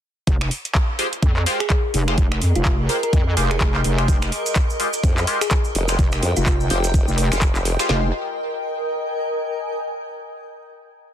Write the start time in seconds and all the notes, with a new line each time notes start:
0.27 F1 A#4, kick, closed hi-hat
0.41 finger snap
0.51 open hi-hat
0.59 D#5
0.65 closed hi-hat
0.75 G#4, kick, clap
0.99 G#3 F4 G4 C5, open hi-hat
1.13 closed hi-hat
1.23 F2, kick, closed hi-hat
1.36 clap
1.46 G#3 F4 G4 C5, open hi-hat
1.60 G#4, finger snap, closed hi-hat
1.70 G#4, kick, clap, closed hi-hat
1.94 F1, open hi-hat
2.08 G#3 F4 G4 C5, finger snap, closed hi-hat
2.18 F1, kick, closed hi-hat
2.32 finger snap
2.41 F2, open hi-hat
2.55 F1 F4, closed hi-hat
2.65 F4, kick, clap
2.89 G#3 F4 G4 A#4 C5, open hi-hat
3.03 A#4, closed hi-hat
3.13 F2, kick, closed hi-hat
3.37 F1 G#3 F4 G4 C5, open hi-hat
3.51 G#4, finger snap, closed hi-hat
3.61 F1, kick, clap, closed hi-hat
3.75 G#3 F4 G4 C5, clap
3.84 F1, open hi-hat
3.98 G#3 F4 G4 C5, finger snap, closed hi-hat
4.08 F1, kick, closed hi-hat, cabasa
4.22 G5, finger snap, cabasa
4.32 open hi-hat
4.46 closed hi-hat, cabasa
4.55 kick, clap, cabasa
4.70 cabasa
4.80 G#3 F4 G4 C5, open hi-hat
4.93 closed hi-hat, cabasa
5.04 F2, kick, closed hi-hat, cabasa
5.17 clap, cabasa
5.27 G#3 F4 G4 C5, open hi-hat
5.41 G#4, finger snap, closed hi-hat, cabasa
5.50 kick, clap, closed hi-hat, cabasa
5.64 cabasa
5.75 F1, open hi-hat
5.88 G#3 F4 G4 C5, finger snap, closed hi-hat, cabasa
5.99 F1, kick, closed hi-hat, cabasa
6.12 finger snap, cabasa
6.22 F2, open hi-hat
6.36 F1 F4, closed hi-hat, cabasa
6.46 kick, clap, cabasa
6.60 cabasa
6.70 F1 G#3 F4 G4 C5, open hi-hat
6.84 closed hi-hat, cabasa
6.94 kick, closed hi-hat, cabasa
7.08 F1, cabasa
7.18 open hi-hat
7.32 F1 G#3 F4 G4 C5, finger snap, closed hi-hat, cabasa
7.41 kick, clap, closed hi-hat, cabasa
7.55 clap, cabasa
7.65 open hi-hat
7.79 G#3 F4 G4 C5, finger snap, closed hi-hat, cabasa
7.89 F1 G#3 F4 G4 A#4 C5, snare
7.97 D#5
8.05 G#5